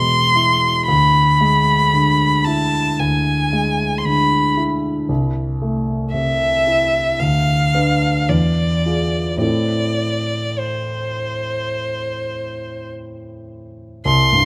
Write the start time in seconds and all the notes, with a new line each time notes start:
Already playing: B2 G#3 E4 C6
0.35 E4
0.88 D2 B5
1.41 G#3
1.93 D3
2.45 E4 A5
2.98 D2 G#5
3.53 G#3
3.98 C6
4.05 D3 B5
4.57 E4
5.09 C2
5.62 A3
6.13 C3 E5
6.67 E4
7.19 D2 F5
7.74 D4 B4
8.29 E2 D5
8.86 F4 G#4
9.37 A2 C4 E4 A4
9.42 D5
10.58 C5
14.05 C2 C6
14.32 G2